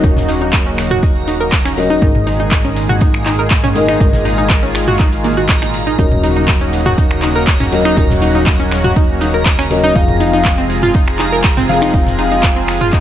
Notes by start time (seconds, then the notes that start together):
Already playing: C#3 F#3 A#3 D#4 F#4 A#5
0.03 D#1 F#3 C#4 D#4 A#4 D#5, kick, closed hi-hat
0.17 snare, closed hi-hat, mid tom
0.28 D#4, closed hi-hat, open hi-hat
0.41 D#4, closed hi-hat, high conga
0.53 kick, snare, clap, closed hi-hat
0.66 C#4, closed hi-hat
0.78 finger snap, snare, closed hi-hat, open hi-hat
0.91 F#4, closed hi-hat, mid tom
1.03 D#4, kick, closed hi-hat
1.16 closed hi-hat
1.27 D#4, closed hi-hat, open hi-hat, high conga
1.41 A#4, closed hi-hat
1.52 kick, snare, clap, closed hi-hat
1.65 C#4, finger snap, snare, closed hi-hat
1.77 F#3 C#4 A#4 D#5, closed hi-hat, open hi-hat
1.90 D#4, closed hi-hat, high conga
2.02 G#1 G#2 A#2 D#3 G#3 D#4 G#4 A#4 D#5, kick, closed hi-hat
2.15 closed hi-hat, mid tom
2.27 D#4, closed hi-hat, open hi-hat
2.40 D#4, closed hi-hat, high conga
2.51 kick, snare, clap, closed hi-hat
2.65 C#4, closed hi-hat
2.76 closed hi-hat, open hi-hat
2.89 F#4, closed hi-hat, mid tom
3.01 D#4, kick, closed hi-hat
3.14 finger snap, closed hi-hat
3.26 D#4, clap, closed hi-hat, open hi-hat, high conga
3.39 A#4, closed hi-hat
3.50 kick, snare, clap, closed hi-hat, open hi-hat
3.64 C#4, closed hi-hat, mid tom
3.76 G#2 G#3 D#4 A#4 D#5, closed hi-hat, open hi-hat
3.88 D#4, finger snap, closed hi-hat, high conga
4.00 G#1 G#2 G#3 D#4 F4 A#4 D#5, kick, closed hi-hat
4.13 snare, closed hi-hat, mid tom
4.25 D#4, closed hi-hat, open hi-hat
4.38 D#4, closed hi-hat, high conga
4.50 kick, snare, clap, closed hi-hat
4.63 C#4, closed hi-hat
4.75 finger snap, snare, closed hi-hat, open hi-hat
4.88 F#4, closed hi-hat, mid tom
4.99 D#4, kick, clap, closed hi-hat
5.13 open hi-hat
5.24 A#3, closed hi-hat, open hi-hat, high conga
5.37 F#4, closed hi-hat
5.49 kick, snare, clap, closed hi-hat
5.62 D#4, finger snap, snare, closed hi-hat
5.74 closed hi-hat, open hi-hat
5.87 D#4, closed hi-hat, high conga
5.98 D#1 C#3 F#3 A#3 C#4 D#4 F#4 A#4 D#5, kick, closed hi-hat
6.12 closed hi-hat, mid tom
6.24 D#4, closed hi-hat, open hi-hat
6.36 D#4, closed hi-hat, high conga
6.48 kick, snare, clap, closed hi-hat
6.61 C#4, closed hi-hat
6.73 closed hi-hat, open hi-hat
6.85 F#4, closed hi-hat, mid tom
6.98 D#4, kick, closed hi-hat
7.11 finger snap, closed hi-hat
7.22 D#4, clap, closed hi-hat, open hi-hat, high conga
7.36 A#4, closed hi-hat
7.47 kick, snare, clap, closed hi-hat, open hi-hat
7.60 C#4, closed hi-hat, mid tom
7.72 F#3 C#4 A#4 D#5, closed hi-hat, open hi-hat
7.85 D#4, finger snap, closed hi-hat, high conga
7.96 D#1 F#3 C#4 D#4 A#4 D#5, kick, closed hi-hat
8.10 snare, closed hi-hat, mid tom
8.21 D#4, closed hi-hat, open hi-hat
8.35 D#4, closed hi-hat, high conga
8.46 kick, snare, clap, closed hi-hat
8.60 C#4, closed hi-hat
8.72 finger snap, snare, closed hi-hat, open hi-hat
8.84 F#4, closed hi-hat, mid tom
8.96 D#4, kick, closed hi-hat
9.09 closed hi-hat
9.21 D#4, closed hi-hat, open hi-hat, high conga
9.34 A#4, closed hi-hat
9.46 kick, snare, clap, closed hi-hat
9.58 C#4, finger snap, snare, closed hi-hat
9.70 F#3 C#4 A#4 D#5, closed hi-hat, open hi-hat
9.84 D#4, closed hi-hat, high conga
9.95 F1 C3 F3 G#3 C4 D#4 F4 G#4 F5, kick, closed hi-hat
10.08 closed hi-hat, mid tom
10.20 D#4, closed hi-hat, open hi-hat
10.33 D#4, closed hi-hat, high conga
10.45 kick, snare, clap, closed hi-hat
10.58 C4, closed hi-hat
10.70 closed hi-hat, open hi-hat
10.82 F4, closed hi-hat, mid tom
10.94 D#4, kick, closed hi-hat
11.08 finger snap, closed hi-hat
11.19 D#4, clap, closed hi-hat, open hi-hat, high conga
11.32 A#4, closed hi-hat
11.44 kick, snare, clap, closed hi-hat, open hi-hat
11.57 C4, closed hi-hat, mid tom
11.69 F3 C4 G#4 F5, closed hi-hat, open hi-hat
11.82 D#4, finger snap, high conga
11.94 F1 F3 C4 D#4 G#4 F5, kick, closed hi-hat
12.07 snare, closed hi-hat, mid tom
12.19 D#4, closed hi-hat, open hi-hat
12.31 D#4, closed hi-hat, high conga
12.43 kick, snare, clap, closed hi-hat
12.56 C4, closed hi-hat
12.68 finger snap, snare, closed hi-hat, open hi-hat
12.81 F4, closed hi-hat, mid tom
12.93 D#4, kick, clap, closed hi-hat